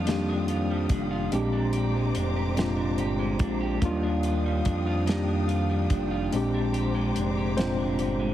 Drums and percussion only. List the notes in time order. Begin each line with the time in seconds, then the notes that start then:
0.07 snare, closed hi-hat
0.48 closed hi-hat
0.89 kick, closed hi-hat
1.32 closed hi-hat
1.73 closed hi-hat
2.15 closed hi-hat
2.57 snare, closed hi-hat
2.98 closed hi-hat
3.39 kick, closed hi-hat
3.82 kick, closed hi-hat
4.23 closed hi-hat
4.65 kick, closed hi-hat
5.08 snare, closed hi-hat
5.49 closed hi-hat
5.90 kick, closed hi-hat
6.33 closed hi-hat
6.74 closed hi-hat
7.16 closed hi-hat
7.58 snare, closed hi-hat
7.99 closed hi-hat